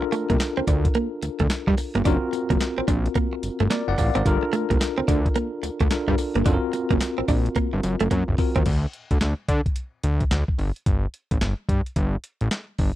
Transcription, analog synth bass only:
0.30 0.37 C2 medium
0.57 0.61 D2 medium
0.67 0.88 D2 medium
1.22 1.29 D2 soft
1.40 1.48 D2 medium
1.67 1.75 G2 loud
1.95 2.02 G1 loud
2.05 2.18 F#1 loud
2.50 2.58 F#1 medium
2.78 2.82 A#1 medium
2.88 3.08 A#1 medium
3.43 3.50 G1 medium
3.60 3.68 G1 loud
3.88 3.95 F#1 medium
3.98 4.11 A1 medium
4.16 4.23 G#1 medium
4.26 4.38 G1 loud
4.71 4.78 C2 medium
4.98 5.02 D2 soft
5.08 5.28 D2 medium
5.63 5.70 D2 soft
5.81 5.88 D2 medium
6.08 6.15 G2 loud
6.35 6.43 G1 medium
6.46 6.58 F#1 loud
6.91 6.98 F#1 medium
7.19 7.23 A#1 medium
7.28 7.49 A#1 medium
7.73 7.81 G1 loud
7.83 7.96 F#1 loud
8.01 8.08 F#1 medium
8.11 8.24 F#2 loud
8.28 8.36 F#1 medium
8.56 8.63 D#2 medium
8.66 8.86 D2 loud
9.11 9.18 D2 medium
9.21 9.34 D2 medium
9.49 9.61 D3 loud
10.04 10.24 D2 loud
10.31 10.44 D2 loud
10.58 10.71 G1 loud
10.86 11.07 G1 loud
11.31 11.39 A1 medium
11.41 11.54 G1 medium
11.69 11.81 G2 medium
11.96 12.16 G1 loud
12.41 12.49 A1 medium
12.79 12.92 G1 medium

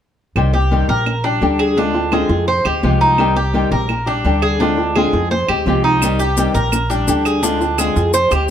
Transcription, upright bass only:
0.36 0.85 C2 medium
0.89 1.38 A#1 medium
1.42 2.25 D2 medium
2.29 2.63 F2 medium
2.65 2.82 D2 medium
2.83 3.66 C2 medium
3.72 4.21 A#1 medium
4.25 5.07 D2 medium
5.13 5.46 F2 medium
5.48 5.65 D2 medium
5.66 6.49 C2 medium
6.55 7.04 A#1 medium
7.08 7.91 D2 medium
7.96 8.29 F2 medium
8.31 8.48 D2 medium

